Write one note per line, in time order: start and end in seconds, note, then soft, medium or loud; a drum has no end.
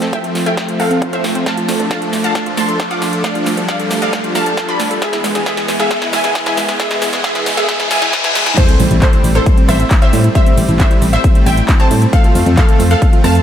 0.00 0.18 F2 medium
0.00 4.98 F3 medium
0.00 3.20 A3 medium
0.00 1.42 C4 medium
0.00 0.11 A4 medium
0.00 snare medium
0.00 closed hi-hat medium
0.00 riser medium
0.13 0.22 A3 medium
0.13 0.37 E5 medium
0.13 0.37 G5 medium
0.13 kick loud
0.13 closed hi-hat medium
0.24 0.34 A4 medium
0.24 closed hi-hat medium
0.35 0.51 F2 medium
0.35 0.42 A3 medium
0.35 snare medium
0.35 open hi-hat medium
0.46 0.53 A4 medium
0.46 0.71 E5 medium
0.46 0.71 G5 medium
0.46 closed hi-hat medium
0.57 0.64 A3 medium
0.57 kick loud
0.57 snare medium
0.57 closed hi-hat medium
0.68 0.75 F4 medium
0.68 closed hi-hat medium
0.80 0.95 F2 medium
0.80 0.83 A4 medium
0.80 1.04 A4 medium
0.80 1.04 F5 loud
0.80 open hi-hat loud
0.91 0.97 C4 loud
0.91 closed hi-hat medium
1.02 1.11 F4 loud
1.02 kick loud
1.02 closed hi-hat medium
1.13 1.19 A3 medium
1.13 1.37 C5 medium
1.13 1.37 E5 medium
1.13 closed hi-hat medium
1.24 1.40 F1 medium
1.24 1.34 A3 medium
1.24 snare medium
1.24 open hi-hat medium
1.35 1.42 C4 loud
1.35 closed hi-hat medium
1.46 1.53 A3 medium
1.46 4.98 D4 medium
1.46 1.79 F5 medium
1.46 1.79 A5 loud
1.46 kick loud
1.46 snare medium
1.46 closed hi-hat medium
1.46 shaker soft
1.57 1.64 F4 medium
1.57 closed hi-hat medium
1.57 shaker soft
1.68 1.76 D2 loud
1.68 1.72 A3 loud
1.68 snare medium
1.68 open hi-hat loud
1.68 shaker medium
1.80 1.95 D2 loud
1.80 1.89 A4 medium
1.80 closed hi-hat medium
1.80 shaker soft
1.91 2.00 A3 medium
1.91 2.15 F5 medium
1.91 2.15 A5 medium
1.91 kick loud
1.91 snare medium
1.91 closed hi-hat medium
1.91 shaker soft
2.02 2.11 A4 medium
2.02 closed hi-hat medium
2.02 shaker soft
2.13 2.29 D2 medium
2.13 2.19 A3 medium
2.13 snare medium
2.13 open hi-hat medium
2.13 shaker medium
2.24 2.30 A4 medium
2.24 2.48 F5 medium
2.24 2.48 A5 medium
2.24 closed hi-hat medium
2.24 shaker soft
2.35 2.42 A3 medium
2.35 kick loud
2.35 snare medium
2.35 closed hi-hat medium
2.35 shaker soft
2.46 2.53 F4 medium
2.46 closed hi-hat medium
2.57 2.73 D2 medium
2.57 2.61 A3 loud
2.57 2.82 A5 medium
2.57 2.82 C6 loud
2.57 snare medium
2.57 open hi-hat loud
2.57 shaker medium
2.69 2.78 A4 medium
2.69 closed hi-hat medium
2.69 shaker soft
2.80 2.83 A4 medium
2.80 kick loud
2.80 snare medium
2.80 closed hi-hat medium
2.80 shaker soft
2.91 2.97 F4 medium
2.91 3.15 F5 medium
2.91 3.15 D6 medium
2.91 closed hi-hat medium
3.02 3.18 D1 loud
3.02 3.08 A3 medium
3.02 snare medium
3.02 open hi-hat medium
3.02 shaker medium
3.13 3.19 A4 medium
3.13 closed hi-hat medium
3.13 shaker soft
3.24 5.00 G3 medium
3.24 3.30 A3 medium
3.24 3.56 D5 medium
3.24 3.56 F5 loud
3.24 kick loud
3.24 snare medium
3.24 closed hi-hat medium
3.24 shaker soft
3.35 3.42 F4 medium
3.35 closed hi-hat medium
3.35 shaker soft
3.46 3.54 D2 loud
3.46 3.50 A3 loud
3.46 snare medium
3.46 open hi-hat loud
3.46 shaker medium
3.57 3.73 D2 loud
3.57 3.67 A4 medium
3.57 closed hi-hat medium
3.57 shaker soft
3.69 3.78 A3 medium
3.69 3.93 D5 medium
3.69 3.93 F5 medium
3.69 kick loud
3.69 snare medium
3.69 closed hi-hat medium
3.69 shaker soft
3.80 3.89 A4 medium
3.80 closed hi-hat medium
3.80 shaker soft
3.91 4.07 D2 medium
3.91 3.97 A3 medium
3.91 snare medium
3.91 open hi-hat medium
3.91 shaker medium
4.02 4.08 A4 medium
4.02 4.26 D5 medium
4.02 4.26 F5 medium
4.02 closed hi-hat medium
4.02 shaker soft
4.13 4.19 A3 medium
4.13 kick loud
4.13 snare medium
4.13 closed hi-hat medium
4.13 shaker soft
4.24 4.30 F4 medium
4.24 closed hi-hat medium
4.35 4.51 D2 medium
4.35 4.39 A3 loud
4.35 4.59 F5 medium
4.35 4.59 A5 loud
4.35 snare medium
4.35 open hi-hat loud
4.35 shaker medium
4.46 4.56 A4 medium
4.46 closed hi-hat medium
4.46 shaker soft
4.57 4.61 A4 medium
4.57 kick loud
4.57 snare medium
4.57 closed hi-hat medium
4.57 shaker soft
4.69 4.75 F4 medium
4.69 4.93 D5 medium
4.69 4.93 B5 medium
4.69 closed hi-hat medium
4.80 4.95 D1 loud
4.80 4.86 A3 medium
4.80 snare medium
4.80 open hi-hat medium
4.80 shaker medium
4.91 4.97 A4 medium
4.91 closed hi-hat medium
4.91 shaker soft
5.02 8.54 E3 medium
5.02 8.54 G#3 medium
5.02 5.08 G#3 medium
5.02 8.54 B3 medium
5.02 5.34 G#4 medium
5.02 5.34 E5 loud
5.02 kick loud
5.02 snare medium
5.02 closed hi-hat medium
5.02 shaker soft
5.13 5.19 E4 medium
5.13 snare medium
5.13 closed hi-hat medium
5.13 shaker soft
5.24 5.32 E2 loud
5.24 5.28 G#3 loud
5.24 snare loud
5.24 open hi-hat loud
5.24 shaker medium
5.35 5.51 E2 loud
5.35 5.45 G#4 medium
5.35 snare medium
5.35 closed hi-hat medium
5.35 shaker soft
5.46 5.56 G#3 medium
5.46 5.71 G#4 medium
5.46 5.71 E5 medium
5.46 kick loud
5.46 snare medium
5.46 closed hi-hat medium
5.46 shaker soft
5.57 5.67 G#4 medium
5.57 snare medium
5.57 closed hi-hat medium
5.57 shaker soft
5.68 5.84 E2 medium
5.68 5.75 G#3 medium
5.68 snare medium
5.68 open hi-hat medium
5.68 shaker medium
5.80 5.86 G#4 medium
5.80 6.04 G#4 medium
5.80 6.04 E5 medium
5.80 snare medium
5.80 closed hi-hat medium
5.80 shaker soft
5.91 5.97 G#3 medium
5.91 kick loud
5.91 snare loud
5.91 closed hi-hat medium
5.91 shaker soft
6.02 6.08 E4 medium
6.02 snare medium
6.02 closed hi-hat medium
6.13 6.29 E2 medium
6.13 6.17 G#3 loud
6.13 6.37 E5 medium
6.13 6.37 G#5 loud
6.13 snare medium
6.13 open hi-hat loud
6.13 shaker medium
6.24 6.34 G#4 medium
6.24 snare medium
6.24 closed hi-hat medium
6.24 shaker soft
6.35 6.39 G#4 medium
6.35 kick loud
6.35 snare loud
6.35 closed hi-hat medium
6.35 shaker soft
6.46 6.53 E4 medium
6.46 6.71 E5 medium
6.46 6.71 G#5 medium
6.46 snare medium
6.46 closed hi-hat medium
6.57 6.64 G#3 medium
6.57 snare loud
6.57 open hi-hat medium
6.57 shaker medium
6.68 6.75 G#4 medium
6.68 snare medium
6.68 closed hi-hat medium
6.68 shaker soft
6.80 6.86 G#3 medium
6.80 7.12 G#4 medium
6.80 7.12 E5 loud
6.80 kick loud
6.80 snare loud
6.80 closed hi-hat medium
6.80 shaker soft
6.91 6.97 E4 medium
6.91 snare medium
6.91 closed hi-hat medium
6.91 shaker soft
7.02 7.10 E2 loud
7.02 7.06 G#3 loud
7.02 snare loud
7.02 open hi-hat loud
7.02 shaker medium
7.13 7.29 E2 loud
7.13 7.23 G#4 medium
7.13 snare loud
7.13 closed hi-hat medium
7.13 shaker soft
7.24 7.34 G#3 medium
7.24 7.48 G#4 medium
7.24 7.48 E5 medium
7.24 kick loud
7.24 snare loud
7.24 closed hi-hat medium
7.24 shaker soft
7.35 7.45 G#4 medium
7.35 snare medium
7.35 closed hi-hat medium
7.35 shaker soft
7.46 7.62 E2 medium
7.46 7.53 G#3 medium
7.46 snare loud
7.46 open hi-hat medium
7.46 shaker medium
7.57 7.82 G#4 medium
7.57 7.64 G#4 medium
7.57 7.82 E5 loud
7.57 snare medium
7.57 closed hi-hat medium
7.57 shaker soft
7.68 7.75 G#3 medium
7.68 kick loud
7.68 snare loud
7.68 closed hi-hat medium
7.68 reverse cymbal medium
7.68 shaker soft
7.80 7.86 E4 medium
7.80 snare medium
7.80 closed hi-hat medium
7.80 shaker soft
7.91 8.07 E2 medium
7.91 8.15 E5 medium
7.91 7.97 G#5 medium
7.91 8.15 G#5 loud
7.91 snare loud
7.91 open hi-hat loud
7.91 shaker medium
8.02 8.06 E4 medium
8.02 snare loud
8.02 closed hi-hat medium
8.02 shaker soft
8.13 8.19 G#3 medium
8.13 kick loud
8.13 snare loud
8.13 closed hi-hat medium
8.13 shaker soft
8.24 8.30 B4 loud
8.24 8.48 E5 medium
8.24 8.48 G#5 medium
8.24 snare medium
8.24 closed hi-hat medium
8.24 shaker soft
8.35 8.51 E2 loud
8.35 8.42 G#3 medium
8.35 snare loud
8.35 open hi-hat medium
8.35 shaker medium
8.46 8.56 E4 medium
8.46 snare medium
8.46 closed hi-hat medium
8.46 shaker soft
8.57 8.64 G3 medium
8.57 12.09 G3 medium
8.57 13.43 A3 medium
8.57 13.43 C4 medium
8.57 8.90 A4 medium
8.57 8.90 C5 loud
8.57 kick loud
8.57 closed hi-hat medium
8.57 crash loud
8.57 impact medium
8.57 shaker soft
8.68 8.75 C4 medium
8.68 closed hi-hat medium
8.68 shaker soft
8.80 8.88 A1 loud
8.80 8.83 G3 loud
8.80 open hi-hat loud
8.80 shaker medium
8.91 9.07 A1 medium
8.91 9.00 E4 medium
8.91 closed hi-hat medium
8.91 shaker soft
9.02 9.26 A4 medium
9.02 9.26 C5 medium
9.02 kick loud
9.02 clap loud
9.02 closed hi-hat medium
9.02 shaker soft
9.13 9.23 E4 medium
9.13 closed hi-hat medium
9.13 shaker soft
9.24 9.40 A1 medium
9.24 9.30 G3 medium
9.24 open hi-hat loud
9.24 shaker medium
9.35 9.42 E4 medium
9.35 9.59 A4 medium
9.35 9.59 C5 medium
9.35 closed hi-hat medium
9.35 shaker soft
9.46 9.53 G3 medium
9.46 kick loud
9.46 closed hi-hat medium
9.46 shaker soft
9.57 9.64 C4 medium
9.57 closed hi-hat medium
9.68 9.84 A1 medium
9.68 9.72 G3 loud
9.68 9.93 C5 medium
9.68 9.93 E5 loud
9.68 9.93 E5 medium
9.68 cross-stick medium
9.68 open hi-hat loud
9.68 shaker medium
9.80 9.89 E4 medium
9.80 closed hi-hat medium
9.80 shaker soft
9.91 kick loud
9.91 clap loud
9.91 closed hi-hat medium
9.91 shaker soft
10.02 10.08 C4 medium
10.02 10.26 C5 medium
10.02 10.26 E5 medium
10.02 closed hi-hat medium
10.13 10.29 A2 loud
10.13 10.19 G3 medium
10.13 open hi-hat loud
10.13 shaker medium
10.24 10.31 E4 medium
10.24 closed hi-hat medium
10.24 shaker soft
10.35 10.42 G3 medium
10.35 10.68 C5 medium
10.35 10.67 E5 loud
10.35 10.68 E5 loud
10.35 kick loud
10.35 closed hi-hat medium
10.35 shaker soft
10.46 10.53 C4 medium
10.46 closed hi-hat medium
10.46 shaker soft
10.57 10.65 A1 loud
10.57 10.61 G3 loud
10.57 open hi-hat loud
10.57 shaker medium
10.69 10.84 A1 loud
10.69 10.78 E4 medium
10.69 closed hi-hat medium
10.69 shaker soft
10.80 10.89 G3 medium
10.80 11.04 C5 medium
10.80 11.04 E5 medium
10.80 kick loud
10.80 clap loud
10.80 closed hi-hat medium
10.80 shaker soft
10.91 11.00 E4 medium
10.91 closed hi-hat medium
10.91 shaker soft
11.02 11.18 A1 medium
11.02 11.08 G3 medium
11.02 open hi-hat loud
11.02 shaker medium
11.13 11.19 E4 medium
11.13 11.37 C5 medium
11.13 11.37 E5 loud
11.13 11.37 E5 medium
11.13 closed hi-hat medium
11.13 shaker soft
11.24 11.30 G3 medium
11.24 kick loud
11.24 closed hi-hat medium
11.24 shaker soft
11.35 11.42 C4 medium
11.35 closed hi-hat medium
11.46 11.62 A1 medium
11.46 11.50 G3 loud
11.46 11.71 E5 medium
11.46 11.70 G5 medium
11.46 11.71 G5 medium
11.46 open hi-hat loud
11.46 shaker medium
11.57 11.67 E4 medium
11.57 closed hi-hat medium
11.57 shaker soft
11.69 11.72 E4 medium
11.69 kick loud
11.69 clap loud
11.69 closed hi-hat medium
11.69 shaker soft
11.80 11.86 C4 medium
11.80 12.04 C5 medium
11.80 12.04 A5 medium
11.80 closed hi-hat medium
11.91 12.07 A2 loud
11.91 11.97 G3 medium
11.91 open hi-hat loud
11.91 shaker medium
12.02 12.08 E4 medium
12.02 closed hi-hat medium
12.02 shaker soft
12.13 13.43 F3 medium
12.13 12.19 A3 medium
12.13 12.45 A4 medium
12.13 12.45 F5 loud
12.13 kick loud
12.13 closed hi-hat medium
12.13 shaker soft
12.24 12.31 F4 medium
12.24 closed hi-hat medium
12.24 shaker soft
12.35 12.43 F2 loud
12.35 12.39 A3 loud
12.35 open hi-hat loud
12.35 shaker medium
12.46 12.62 F2 loud
12.46 12.56 A4 medium
12.46 closed hi-hat medium
12.46 shaker soft
12.57 12.67 A3 medium
12.57 12.82 A4 medium
12.57 12.82 F5 medium
12.57 kick loud
12.57 clap loud
12.57 closed hi-hat medium
12.57 shaker soft
12.69 12.78 A4 medium
12.69 closed hi-hat medium
12.69 shaker soft
12.80 12.95 F2 medium
12.80 12.86 A3 medium
12.80 open hi-hat loud
12.80 shaker medium
12.91 12.97 A4 medium
12.91 13.15 A4 medium
12.91 13.15 F5 medium
12.91 closed hi-hat medium
12.91 shaker soft
13.02 13.08 A3 medium
13.02 kick loud
13.02 closed hi-hat medium
13.02 shaker soft
13.13 13.19 F4 medium
13.13 closed hi-hat soft
13.24 13.40 F2 medium
13.24 13.28 A3 loud
13.24 13.43 F5 medium
13.24 13.43 A5 medium
13.24 13.43 A5 loud
13.24 cross-stick medium
13.24 open hi-hat loud
13.24 shaker medium
13.35 13.43 A4 medium
13.35 closed hi-hat medium
13.35 shaker soft